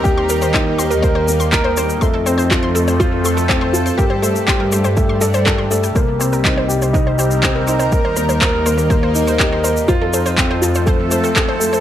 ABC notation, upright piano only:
X:1
M:4/4
L:1/8
Q:1/4=122
K:Eblyd
V:1 name="Upright piano"
G B E G B B, B B, | A, C F A F A C F | G A, G A, A, A A A, | B, C E G E G C E |
B B, B B, B, E G B | F A C F A A, A A, |]